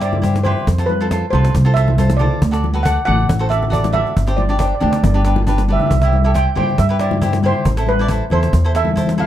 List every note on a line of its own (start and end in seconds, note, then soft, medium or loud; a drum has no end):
0.00 0.52 G2 medium
0.00 0.15 E4 medium
0.00 0.15 G4 soft
0.00 0.15 C5 medium
0.00 0.47 D5 medium
0.00 cajon slap medium
0.13 high conga medium
0.13 low conga medium
0.22 0.36 E4 medium
0.22 0.37 G4 medium
0.22 0.37 C5 medium
0.22 cajon bass medium
0.34 cajon slap medium
0.34 high conga medium
0.43 0.65 E4 medium
0.43 0.65 G4 medium
0.43 0.65 B4 medium
0.43 0.89 C5 medium
0.43 cajon slap soft
0.43 low conga medium
0.57 cajon slap soft
0.67 1.21 F2 medium
0.67 cajon bass loud
0.78 0.91 F4 medium
0.78 0.91 A4 medium
0.78 0.92 C5 medium
0.78 cajon slap medium
0.86 1.32 B4 medium
0.86 cajon slap soft
0.86 high conga medium
1.00 1.07 F4 medium
1.00 1.07 A4 medium
1.00 1.07 C5 medium
1.00 cajon slap soft
1.11 1.24 F4 medium
1.11 1.25 A4 medium
1.11 1.25 C5 medium
1.11 cajon bass medium
1.11 cajon slap medium
1.30 1.51 C2 medium
1.30 1.52 F4 medium
1.30 1.53 A4 medium
1.30 1.77 C5 medium
1.30 cajon slap soft
1.30 low conga medium
1.35 1.53 B4 medium
1.45 cajon slap medium
1.55 2.27 C2 medium
1.55 cajon bass medium
1.65 1.72 F4 medium
1.65 1.72 A4 medium
1.65 1.72 C5 medium
1.74 1.90 F4 medium
1.74 1.90 A4 medium
1.74 1.90 C5 medium
1.74 2.16 E5 medium
1.74 cajon slap medium
1.88 high conga medium
1.88 low conga medium
1.98 2.12 F4 medium
1.98 2.12 A4 medium
1.98 2.12 C5 medium
1.98 cajon bass medium
2.10 cajon slap medium
2.10 high conga medium
2.17 2.39 F4 medium
2.17 2.40 A4 medium
2.17 2.86 D5 medium
2.17 low conga medium
2.21 2.40 C5 medium
2.32 cajon slap soft
2.42 2.96 D2 medium
2.42 cajon bass loud
2.51 2.65 F#4 medium
2.51 2.65 A4 medium
2.51 2.66 D5 medium
2.51 cajon slap medium
2.63 cajon slap soft
2.63 high conga medium
2.74 2.80 F#4 medium
2.74 2.81 A4 medium
2.74 2.81 B4 medium
2.74 cajon slap soft
2.83 2.98 F#4 medium
2.83 2.99 A4 medium
2.83 2.99 D5 medium
2.83 3.04 F#5 medium
2.83 cajon bass medium
2.83 cajon slap medium
3.05 3.26 A1 medium
3.05 3.26 F#4 medium
3.05 3.26 A4 medium
3.05 3.27 D5 medium
3.05 3.47 F#5 medium
3.05 cajon slap soft
3.05 low conga medium
3.19 cajon slap soft
3.29 4.02 A1 medium
3.29 cajon bass loud
3.39 3.46 F#4 medium
3.39 3.47 A4 medium
3.39 3.47 C5 medium
3.49 3.63 F#4 medium
3.49 3.64 A4 medium
3.49 3.64 D5 medium
3.49 3.73 E5 medium
3.49 cajon slap medium
3.63 low conga medium
3.70 3.85 F#4 medium
3.70 3.86 A4 medium
3.70 3.86 D5 medium
3.70 3.83 D5 medium
3.70 cajon bass medium
3.84 cajon slap medium
3.84 high conga medium
3.93 4.13 F#4 medium
3.93 4.14 A4 medium
3.93 4.14 D5 medium
3.93 4.39 E5 medium
3.93 low conga medium
4.06 cajon slap soft
4.17 4.71 G1 medium
4.17 cajon bass medium
4.27 4.40 D4 medium
4.27 4.40 G4 medium
4.27 4.41 C5 medium
4.27 cajon slap medium
4.37 4.58 D5 medium
4.37 cajon slap soft
4.37 high conga medium
4.49 4.55 D4 medium
4.49 4.56 G4 medium
4.49 4.56 D5 medium
4.49 cajon slap soft
4.58 4.73 D4 medium
4.58 4.73 G4 medium
4.58 4.74 C5 medium
4.58 4.65 D5 medium
4.58 cajon bass medium
4.58 cajon slap medium
4.66 4.73 D5 soft
4.74 4.81 D5 medium
4.80 5.00 D2 medium
4.80 5.01 D4 medium
4.80 5.01 G4 medium
4.80 5.02 C5 medium
4.80 4.89 D5 soft
4.80 cajon slap soft
4.80 low conga medium
4.90 4.97 D5 medium
4.90 cajon slap medium
4.98 5.04 D5 soft
5.03 5.76 G1 medium
5.03 5.12 D5 medium
5.03 cajon bass loud
5.03 high conga medium
5.14 5.21 D4 medium
5.14 5.21 G4 medium
5.14 5.22 B4 medium
5.14 5.21 D5 soft
5.25 5.39 D4 medium
5.25 5.39 G4 medium
5.25 5.40 B4 medium
5.25 cajon slap medium
5.36 high conga medium
5.36 low conga medium
5.47 5.61 D4 medium
5.47 5.61 G4 medium
5.47 5.62 B4 medium
5.47 cajon bass medium
5.58 cajon slap medium
5.58 high conga soft
5.68 5.89 D4 medium
5.68 5.89 G4 medium
5.68 5.90 B4 medium
5.68 low conga medium
5.73 5.79 E5 medium
5.80 5.85 E5 medium
5.80 cajon slap soft
5.80 low conga medium
5.86 5.92 E5 medium
5.91 6.45 C2 medium
5.91 6.00 E5 medium
5.91 cajon bass loud
6.02 6.15 E4 medium
6.02 6.16 G4 medium
6.02 6.16 C5 medium
6.02 6.07 E5 medium
6.02 cajon slap medium
6.08 6.15 E5 medium
6.13 6.23 E5 medium
6.13 high conga medium
6.24 6.31 E4 medium
6.24 6.31 G4 medium
6.24 6.31 A4 medium
6.24 6.31 E5 medium
6.24 cajon slap soft
6.34 6.48 E4 medium
6.34 6.48 G4 soft
6.34 6.49 C5 medium
6.34 6.56 G5 medium
6.34 cajon bass medium
6.34 cajon slap medium
6.55 6.75 G2 medium
6.55 6.76 E4 medium
6.55 6.76 G4 medium
6.55 6.77 C5 medium
6.55 6.77 G5 medium
6.55 cajon slap soft
6.55 low conga medium
6.68 cajon slap soft
6.78 7.51 G2 medium
6.78 7.01 E5 medium
6.78 cajon bass loud
6.89 6.96 E4 medium
6.89 6.96 G4 medium
6.89 6.96 B4 medium
6.99 7.13 E4 medium
6.99 7.14 G4 medium
6.99 7.14 C5 medium
6.99 7.41 D5 medium
6.99 cajon slap medium
7.11 cajon slap soft
7.11 high conga medium
7.11 low conga medium
7.21 7.35 E4 medium
7.21 7.36 G4 medium
7.21 7.36 C5 medium
7.21 cajon bass medium
7.32 cajon slap medium
7.32 high conga medium
7.43 7.63 E4 medium
7.43 7.64 G4 medium
7.43 7.64 C5 medium
7.43 7.90 C5 medium
7.43 cajon slap soft
7.43 low conga medium
7.55 cajon slap soft
7.65 8.20 A1 medium
7.65 cajon bass loud
7.77 7.90 E4 medium
7.77 7.90 A4 medium
7.77 7.91 C5 medium
7.77 cajon slap medium
7.87 8.33 B4 medium
7.87 high conga medium
7.99 8.05 E4 medium
7.99 8.06 A4 medium
7.99 8.06 D5 medium
7.99 cajon slap soft
8.08 8.23 E4 medium
8.08 8.23 A4 medium
8.08 8.24 C5 medium
8.08 cajon bass medium
8.08 cajon slap medium
8.30 8.49 E2 medium
8.30 8.51 E4 medium
8.30 8.51 A4 medium
8.30 8.77 C5 medium
8.30 8.52 C5 medium
8.30 cajon slap soft
8.30 low conga medium
8.43 cajon slap medium
8.53 9.25 E2 medium
8.53 cajon bass loud
8.64 8.71 E4 medium
8.64 8.71 A4 medium
8.64 8.71 C5 medium
8.75 8.88 E4 medium
8.75 8.89 A4 medium
8.75 8.89 C5 medium
8.75 9.16 E5 medium
8.75 cajon slap medium
8.85 cajon slap soft
8.85 high conga medium
8.85 low conga medium
8.96 9.10 E4 medium
8.96 9.10 A4 medium
8.96 9.11 C5 medium
8.96 cajon bass medium
9.07 cajon slap medium
9.07 high conga medium
9.18 9.27 E4 medium
9.18 9.27 A4 medium
9.18 9.27 C5 medium
9.18 9.27 F5 medium
9.18 low conga medium